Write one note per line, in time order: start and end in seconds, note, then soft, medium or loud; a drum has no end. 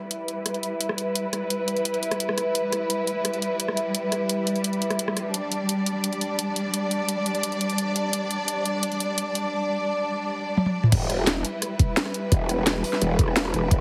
0.00 10.88 G3 medium
0.00 5.30 E4 medium
0.00 5.32 B4 medium
0.11 closed hi-hat medium
0.28 closed hi-hat medium
0.46 cross-stick soft
0.46 closed hi-hat medium
0.54 closed hi-hat soft
0.63 closed hi-hat medium
0.81 closed hi-hat loud
0.89 cross-stick medium
0.98 closed hi-hat medium
1.15 closed hi-hat medium
1.33 cross-stick soft
1.33 closed hi-hat medium
1.50 closed hi-hat medium
1.68 closed hi-hat medium
1.77 closed hi-hat soft
1.85 closed hi-hat medium
1.94 closed hi-hat soft
2.03 closed hi-hat medium
2.11 cross-stick soft
2.11 closed hi-hat soft
2.20 closed hi-hat medium
2.29 cross-stick medium
2.38 cross-stick soft
2.38 closed hi-hat medium
2.55 closed hi-hat medium
2.72 cross-stick soft
2.72 closed hi-hat medium
2.90 closed hi-hat medium
3.07 closed hi-hat medium
3.25 cross-stick soft
3.25 closed hi-hat medium
3.34 closed hi-hat soft
3.42 closed hi-hat medium
3.60 closed hi-hat medium
3.68 cross-stick medium
3.77 closed hi-hat medium
3.95 closed hi-hat medium
4.12 cross-stick soft
4.12 closed hi-hat medium
4.29 closed hi-hat medium
4.47 closed hi-hat medium
4.56 closed hi-hat soft
4.64 closed hi-hat medium
4.73 closed hi-hat soft
4.82 closed hi-hat medium
4.90 cross-stick soft
4.90 closed hi-hat soft
4.99 closed hi-hat medium
5.08 cross-stick medium
5.17 cross-stick soft
5.17 closed hi-hat medium
5.34 10.88 D4 medium
5.34 10.90 D5 medium
5.34 closed hi-hat medium
5.52 closed hi-hat medium
5.69 closed hi-hat medium
5.86 closed hi-hat medium
6.04 closed hi-hat medium
6.13 closed hi-hat soft
6.21 closed hi-hat medium
6.39 closed hi-hat medium
6.56 closed hi-hat medium
6.74 closed hi-hat loud
6.91 closed hi-hat medium
7.09 closed hi-hat medium
7.26 closed hi-hat medium
7.35 closed hi-hat soft
7.43 closed hi-hat medium
7.52 closed hi-hat soft
7.61 closed hi-hat medium
7.70 closed hi-hat soft
7.78 closed hi-hat medium
7.96 closed hi-hat medium
8.13 closed hi-hat loud
8.31 closed hi-hat medium
8.48 closed hi-hat medium
8.66 closed hi-hat medium
8.83 closed hi-hat loud
8.92 closed hi-hat soft
9.00 closed hi-hat medium
9.18 closed hi-hat loud
9.35 closed hi-hat medium
10.57 high tom medium
10.66 high tom medium
10.84 mid tom medium
10.92 11.43 E1 loud
10.92 13.81 G3 medium
10.92 13.81 E4 medium
10.92 13.81 B4 medium
10.92 kick loud
10.92 closed hi-hat loud
10.92 crash loud
11.10 cross-stick soft
11.10 closed hi-hat medium
11.27 snare loud
11.27 closed hi-hat medium
11.45 closed hi-hat medium
11.62 cross-stick soft
11.62 closed hi-hat loud
11.79 kick loud
11.79 closed hi-hat medium
11.97 snare loud
11.97 closed hi-hat loud
12.06 cross-stick medium
12.14 closed hi-hat medium
12.32 12.83 E1 loud
12.32 kick loud
12.32 closed hi-hat loud
12.49 cross-stick soft
12.49 closed hi-hat medium
12.67 snare loud
12.67 closed hi-hat medium
12.84 open hi-hat medium
12.93 snare soft
13.02 13.53 E1 loud
13.02 closed hi-hat loud
13.19 kick loud
13.19 closed hi-hat medium
13.28 cross-stick medium
13.36 snare loud
13.36 closed hi-hat loud
13.45 cross-stick medium
13.54 13.70 E1 loud
13.54 cross-stick soft
13.54 closed hi-hat medium
13.71 kick loud
13.71 closed hi-hat loud